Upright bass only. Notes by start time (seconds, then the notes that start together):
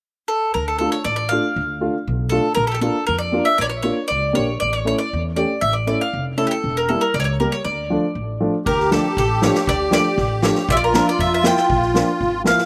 0.55 D2
1.05 A1
1.56 D2
2.08 B1
2.57 A#1
3.09 F2
3.59 A#1
4.11 C#2
4.38 A#1
4.62 A1
5.13 E2
5.62 A1
6.13 F1
6.64 E1
7.14 C#2
7.65 D2
8.15 A1
8.66 D2
9.17 A1
9.67 D2
10.17 A1
10.69 A#1
11.19 F2
11.70 A#1
12.21 G#1